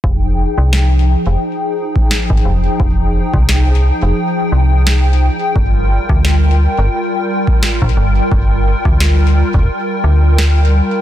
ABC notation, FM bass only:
X:1
M:4/4
L:1/16
Q:"Swing 16ths" 1/4=87
K:Fdor
V:1 name="FM bass" clef=bass
F,,,2 z C,,3 z F,,, z4 z A,,, F,,, z | F,,,2 z C,,3 z F,,, z2 C,,4 z2 | G,,,2 z D,,3 z G,,, z4 z B,,, G,,, z | G,,,2 z D,,3 z G,,, z2 D,,4 z2 |]